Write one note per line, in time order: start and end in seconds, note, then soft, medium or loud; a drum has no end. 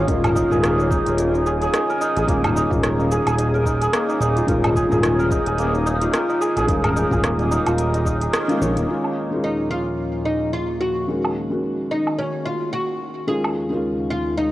0.00 0.62 A#3 loud
0.00 3.67 C#4 medium
0.00 8.90 C#4 medium
0.00 1.06 F4 medium
0.00 0.51 G#4 medium
0.00 0.23 A#4 medium
0.00 2.24 C#5 medium
0.00 8.90 C#5 medium
0.07 0.43 D#1 loud
0.07 0.47 D#3 medium
0.07 0.47 G#3 medium
0.07 0.48 C#4 medium
0.07 0.35 D#4 medium
0.07 0.48 F4 loud
0.07 kick loud
0.07 closed hi-hat medium
0.07 shaker soft
0.24 1.18 A#4 loud
0.24 closed hi-hat soft
0.24 darbuka tek soft
0.24 darbuka dum medium
0.24 low woodblock medium
0.24 shaker soft
0.35 0.78 D#4 loud
0.35 kick medium
0.35 shaker medium
0.49 0.98 D#1 medium
0.49 2.24 D#3 medium
0.49 2.25 G#3 medium
0.49 2.26 C#4 medium
0.49 2.26 F4 medium
0.49 1.46 G#4 loud
0.49 darbuka dum medium
0.49 shaker soft
0.63 2.28 A#3 medium
0.63 cross-stick medium
0.63 closed hi-hat medium
0.63 shaker soft
0.79 0.90 D#4 medium
0.79 shaker soft
0.91 1.34 D#4 loud
0.91 kick loud
0.91 shaker medium
1.07 1.67 D#1 medium
1.07 2.72 F4 medium
1.07 closed hi-hat soft
1.07 shaker soft
1.18 1.89 A#4 medium
1.18 closed hi-hat medium
1.18 shaker soft
1.34 1.73 D#4 medium
1.34 shaker soft
1.46 1.62 G#4 medium
1.46 shaker medium
1.62 2.17 G#4 medium
1.62 closed hi-hat soft
1.62 shaker soft
1.74 2.01 D#4 medium
1.74 cross-stick loud
1.74 closed hi-hat medium
1.74 shaker soft
1.90 2.83 A#4 loud
1.90 shaker soft
2.01 2.44 D#4 loud
2.01 shaker medium
2.16 2.24 A#1 medium
2.16 3.11 G#4 loud
2.16 closed hi-hat soft
2.16 darbuka tek medium
2.16 shaker soft
2.27 2.63 D#1 loud
2.27 2.67 D#3 medium
2.27 2.67 G#3 medium
2.27 3.93 A#3 loud
2.27 2.68 C#4 medium
2.27 2.68 F4 medium
2.27 kick loud
2.27 closed hi-hat medium
2.27 shaker soft
2.44 2.56 D#4 medium
2.44 closed hi-hat soft
2.44 darbuka tek soft
2.44 darbuka dum medium
2.44 low woodblock medium
2.44 shaker soft
2.55 2.99 D#4 loud
2.55 darbuka ka soft
2.55 shaker medium
2.70 3.18 D#1 loud
2.70 2.79 D#3 medium
2.70 2.79 G#3 medium
2.70 2.80 C#4 medium
2.70 2.80 F4 medium
2.70 4.36 F4 medium
2.70 kick loud
2.70 darbuka dum medium
2.70 shaker soft
2.83 3.54 A#4 medium
2.83 cross-stick medium
2.83 closed hi-hat medium
2.83 shaker soft
3.00 3.38 D#4 medium
3.00 shaker soft
3.10 3.26 G#4 loud
3.10 darbuka ka soft
3.10 shaker medium
3.26 3.87 D#1 medium
3.26 3.81 G#4 medium
3.26 closed hi-hat soft
3.26 low woodblock medium
3.26 shaker soft
3.38 3.65 D#4 medium
3.38 closed hi-hat medium
3.38 shaker soft
3.54 4.48 A#4 loud
3.54 shaker soft
3.65 4.08 D#4 medium
3.65 kick medium
3.65 darbuka ka soft
3.65 shaker medium
3.81 4.75 G#4 loud
3.81 closed hi-hat soft
3.81 shaker soft
3.93 5.58 A#3 loud
3.93 cross-stick loud
3.93 closed hi-hat medium
3.93 shaker soft
4.09 4.20 D#4 medium
4.09 shaker soft
4.21 4.41 D#1 medium
4.21 4.64 D#4 loud
4.21 darbuka ka soft
4.21 shaker medium
4.36 6.01 F4 medium
4.36 closed hi-hat soft
4.36 shaker soft
4.47 4.83 D#1 loud
4.47 4.87 D#3 medium
4.47 4.87 G#3 medium
4.47 4.88 C#4 medium
4.47 4.88 F4 loud
4.47 5.19 A#4 medium
4.47 kick loud
4.47 closed hi-hat medium
4.47 shaker soft
4.63 5.03 D#4 medium
4.63 closed hi-hat soft
4.63 darbuka tek soft
4.63 darbuka dum medium
4.63 low woodblock medium
4.63 shaker soft
4.76 4.92 G#4 medium
4.76 kick medium
4.76 shaker medium
4.89 5.38 D#1 loud
4.89 6.64 D#3 medium
4.89 6.65 G#3 medium
4.89 6.66 C#4 medium
4.89 5.47 G#4 loud
4.89 darbuka dum medium
4.89 shaker soft
4.93 6.66 F4 medium
5.03 5.31 D#4 medium
5.03 cross-stick medium
5.03 closed hi-hat medium
5.03 shaker soft
5.19 6.13 A#4 loud
5.19 shaker soft
5.31 5.74 D#4 loud
5.31 kick loud
5.31 shaker medium
5.46 6.07 D#1 medium
5.46 6.40 G#4 loud
5.46 closed hi-hat soft
5.46 darbuka ka soft
5.46 shaker soft
5.58 7.23 A#3 loud
5.58 closed hi-hat medium
5.58 shaker soft
5.74 5.86 D#4 medium
5.74 shaker soft
5.86 6.29 D#4 loud
5.86 shaker medium
6.01 7.66 F4 medium
6.01 closed hi-hat soft
6.01 shaker soft
6.13 6.84 A#4 medium
6.13 cross-stick loud
6.13 closed hi-hat medium
6.13 shaker soft
6.29 6.68 D#4 medium
6.29 shaker soft
6.41 6.56 G#4 loud
6.41 shaker medium
6.56 6.65 A#1 medium
6.56 7.12 G#4 loud
6.56 closed hi-hat soft
6.56 darbuka tek medium
6.56 shaker soft
6.67 7.04 D#1 medium
6.67 7.07 D#3 medium
6.67 7.07 G#3 medium
6.67 7.08 C#4 medium
6.67 6.96 D#4 medium
6.67 7.08 F4 medium
6.67 kick loud
6.67 closed hi-hat medium
6.67 shaker soft
6.84 7.78 A#4 loud
6.84 closed hi-hat soft
6.84 darbuka tek soft
6.84 darbuka dum medium
6.84 low woodblock medium
6.84 shaker soft
6.96 7.39 D#4 medium
6.96 darbuka ka soft
6.96 shaker medium
7.11 7.58 D#1 loud
7.11 7.20 D#3 medium
7.11 7.20 G#3 medium
7.11 7.20 C#4 medium
7.11 7.21 F4 medium
7.11 8.21 G#4 loud
7.11 kick loud
7.11 darbuka dum loud
7.11 shaker soft
7.24 8.49 A#3 loud
7.24 cross-stick loud
7.24 closed hi-hat medium
7.24 shaker soft
7.39 7.51 D#4 medium
7.39 closed hi-hat soft
7.39 shaker soft
7.51 7.94 D#4 loud
7.51 darbuka ka soft
7.51 shaker medium
7.66 8.27 D#1 medium
7.66 11.03 F4 medium
7.66 closed hi-hat soft
7.66 low woodblock medium
7.66 shaker soft
7.78 8.33 A#4 medium
7.78 closed hi-hat medium
7.78 shaker soft
7.94 8.06 D#4 medium
7.94 closed hi-hat soft
7.94 shaker soft
8.05 11.67 D#4 loud
8.05 kick medium
8.05 darbuka ka medium
8.05 shaker medium
8.20 11.25 G#4 medium
8.20 closed hi-hat soft
8.20 darbuka tek soft
8.20 shaker soft
8.33 11.16 A#4 medium
8.33 cross-stick loud
8.33 closed hi-hat medium
8.33 shaker soft
8.48 8.57 D#3 medium
8.48 8.58 G#3 medium
8.48 8.77 A#3 medium
8.48 8.58 C#4 medium
8.48 8.58 F4 loud
8.48 closed hi-hat soft
8.48 shaker soft
8.59 8.78 A#1 medium
8.59 8.85 D#3 medium
8.59 8.85 G#3 medium
8.59 8.86 C#4 medium
8.59 8.86 F4 medium
8.59 11.16 C#5 medium
8.59 darbuka ka soft
8.59 shaker medium
8.77 8.85 D#1 medium
8.77 13.06 A#3 medium
8.77 closed hi-hat soft
8.77 shaker soft
8.87 11.07 D#2 medium
8.87 11.07 A#2 medium
8.87 9.27 D#3 medium
8.87 11.07 F3 medium
8.87 9.28 G#3 medium
8.87 13.25 A#3 medium
8.87 9.28 C#4 medium
8.87 11.07 C#4 medium
8.87 9.28 F4 medium
9.04 low woodblock medium
9.31 11.05 D#3 medium
9.31 11.06 G#3 medium
9.31 11.07 C#4 medium
9.35 11.07 F4 medium
9.44 9.70 D#4 medium
9.71 10.25 F4 medium
10.25 10.51 D#4 medium
10.53 10.80 F4 medium
10.81 11.91 F#4 medium
11.08 11.48 D#3 medium
11.08 13.26 D#3 medium
11.08 11.48 G#3 medium
11.08 11.48 C#4 medium
11.08 13.26 F#4 medium
11.08 11.48 F#4 medium
11.08 14.52 F5 medium
11.24 low woodblock medium
11.50 11.59 D#3 medium
11.50 11.60 G#3 medium
11.50 11.60 C#4 medium
11.50 11.60 F#4 medium
11.91 12.20 D#4 medium
12.07 low woodblock medium
12.19 12.47 C#4 medium
12.45 12.72 F4 medium
12.73 13.27 F#4 medium
13.27 14.52 D#2 medium
13.27 14.52 C#3 medium
13.27 13.67 D#3 medium
13.27 13.68 G#3 medium
13.27 14.52 G#3 medium
13.27 13.68 C#4 medium
13.27 14.52 D#4 medium
13.27 13.68 F4 medium
13.27 14.10 G#4 medium
13.44 low woodblock medium
13.69 14.52 D#3 medium
13.69 14.52 G#3 medium
13.69 14.52 C#4 medium
13.74 14.52 F4 medium
14.10 14.37 F4 medium
14.38 14.52 D#4 medium